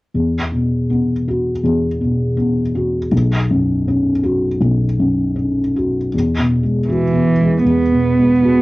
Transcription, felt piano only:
0.14 1.61 E2 soft
0.52 1.13 B2 soft
0.90 1.50 B3 soft
1.28 1.87 F#4 soft
1.64 3.07 E2 soft
2.01 2.60 B2 soft
2.37 2.96 B3 soft
2.75 3.12 F#4 soft
3.12 4.56 B1 soft
3.51 4.09 F#2 soft
3.88 4.46 C#4 soft
4.23 4.83 F#4 soft
4.60 6.09 B1 soft
4.99 5.59 F#2 soft
5.36 5.98 C#4 soft
5.76 6.14 F#4 soft
6.14 7.62 E2 soft
6.39 6.79 B2 soft
6.63 7.04 G#3 soft
6.89 7.30 F#4 soft
7.13 7.55 B3 soft
7.40 7.81 G#3 soft
7.65 8.62 E2 soft
7.92 8.32 B2 soft
8.17 8.57 G#3 soft
8.43 8.62 F#4 soft

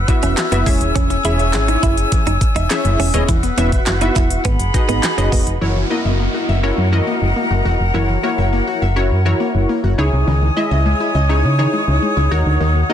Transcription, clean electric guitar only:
0.08 muted clean electric guitar stroke soft
0.23 0.35 C#4 medium
0.38 muted clean electric guitar stroke soft
0.52 0.64 B3 medium
0.67 0.79 G#3 medium
0.95 1.07 C#4 medium
1.10 muted clean electric guitar stroke soft
1.25 1.37 E4 medium
1.54 muted clean electric guitar stroke soft
1.68 1.80 D#4 medium
1.83 1.95 E4 medium
2.27 2.39 D#4 medium
2.42 muted clean electric guitar stroke soft
2.56 2.68 D#4 medium
2.71 muted clean electric guitar stroke soft
3.00 3.12 C#4 medium
3.14 3.26 B3 medium
3.29 3.41 E4 medium
3.43 muted clean electric guitar stroke soft
3.58 3.70 C#4 medium
3.87 muted clean electric guitar stroke soft
4.01 4.13 D#4 medium
4.16 4.28 E4 medium
4.45 4.57 B3 loud
4.74 muted clean electric guitar stroke soft
4.89 5.01 B3 medium
5.03 muted clean electric guitar stroke soft
5.18 5.30 C#4 medium
5.32 5.44 B3 medium

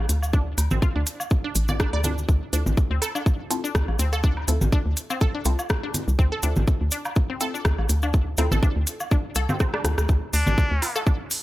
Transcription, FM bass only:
0.09 0.54 D2 loud
0.58 0.69 D2 medium
0.71 0.80 A1 loud
0.96 1.04 D2 medium
1.55 1.89 A1 loud
1.93 2.25 D2 loud
2.29 2.39 D2 loud
2.53 2.64 D2 medium
2.66 2.75 A1 loud
2.91 2.99 D2 medium
3.75 3.86 D2 medium
3.88 3.97 A1 medium
3.99 4.45 D2 loud
4.48 4.59 D2 medium
4.61 4.70 A1 loud
4.86 4.95 D2 medium
5.46 5.56 C2 medium
6.08 6.17 C2 loud
6.19 6.30 D2 loud
6.43 6.54 D2 medium
6.57 6.65 A1 loud
6.81 6.90 D2 medium
7.65 7.76 D2 medium
7.79 7.87 A1 medium
7.89 8.35 D2 loud
8.38 8.49 D2 medium
8.52 8.60 A1 loud
8.76 8.85 D2 medium
9.36 9.47 C2 medium
9.85 9.95 D2 medium
9.98 10.07 D2 medium
10.09 10.20 D2 loud
10.33 10.44 D2 medium
10.47 10.56 A1 loud
10.71 10.80 D2 medium

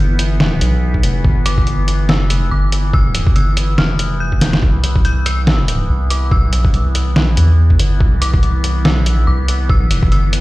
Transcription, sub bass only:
0.00 0.60 G1 loud
0.61 1.02 B1 loud
1.03 1.23 F1 loud
1.25 2.13 G1 loud
2.13 2.38 F#1 loud
2.38 2.50 F1 loud
2.51 3.34 G1 loud
3.36 3.77 G1 loud
3.78 4.61 F1 loud
4.63 5.88 C2 loud
5.89 6.48 C2 medium
6.48 6.72 B1 medium
6.74 7.18 C2 loud
7.18 7.36 B1 loud
7.37 7.78 E2 loud
7.79 7.99 G1 loud
8.01 8.89 C2 loud
8.89 9.14 B1 loud
9.14 9.26 A#1 loud
9.27 10.10 C2 loud
10.12 10.40 G1 loud

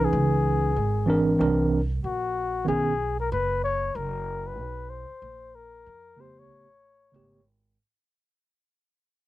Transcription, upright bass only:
0.13 0.73 C#2 medium
0.76 1.37 G#1 medium
1.41 2.01 C2 loud
2.04 2.64 A#1 medium
2.68 3.28 B1 medium
3.32 3.92 F#1 loud
3.95 4.59 F#1 medium
4.59 5.08 B1 medium
5.10 muted upright bass stroke soft
5.22 5.83 A#1 medium
5.86 6.50 F2 medium
6.50 7.11 A1 medium
7.14 7.75 G#1 medium

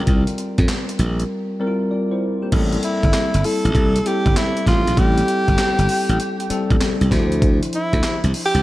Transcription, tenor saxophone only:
2.85 3.47 E4 medium
3.45 4.08 A4 loud
4.07 4.39 G4 medium
4.37 4.67 E4 medium
4.68 5.01 F4 medium
4.99 6.82 G4 loud
7.75 8.31 E4 medium
8.46 8.63 G4 loud

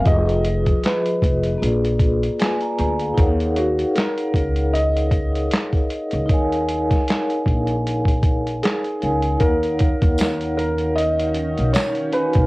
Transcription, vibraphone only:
0.02 1.57 F3 medium
0.02 1.58 F4 medium
0.02 1.59 G#4 medium
0.08 1.60 B4 medium
0.08 1.60 D#5 medium
1.58 3.13 A#3 medium
1.58 3.13 F4 medium
1.58 2.38 G#4 medium
1.64 2.39 B4 medium
1.64 2.40 D5 medium
2.40 2.61 B4 medium
2.40 2.60 G#5 medium
2.62 2.99 D5 medium
2.62 2.99 A#5 medium
3.01 3.38 G#4 soft
3.01 3.19 F5 medium
3.14 6.24 D#4 medium
3.14 6.25 A#4 medium
3.18 6.26 C#5 medium
3.18 6.27 F5 medium
3.18 6.27 F#5 medium
6.26 8.96 D#4 medium
6.26 8.97 A#4 medium
6.26 8.98 C#5 medium
6.32 8.99 F5 medium
6.32 9.00 G#5 medium
9.00 9.36 D#4 medium
9.00 9.39 A#4 medium
9.00 9.40 C#5 medium
9.00 9.41 F5 soft
9.00 9.42 G#5 medium
9.37 12.08 D#4 medium
9.37 12.09 A#4 medium
9.42 12.10 C#5 medium
9.42 12.11 F5 medium
9.42 12.12 F#5 medium
12.12 12.47 D#4 soft
12.12 12.47 F#4 soft
12.12 12.47 C#5 soft
12.12 12.47 F5 soft
12.12 12.47 G#5 medium

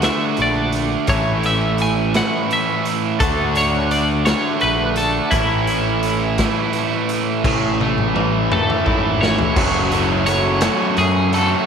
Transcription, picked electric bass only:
0.39 0.95 A#1 medium
1.08 2.20 A1 medium
3.20 4.32 D2 medium
4.63 5.19 A#1 medium
5.32 6.44 A1 medium
7.44 8.56 A1 loud
8.87 9.42 G#1 medium
9.57 10.68 F#1 medium
10.98 11.54 F#2 medium

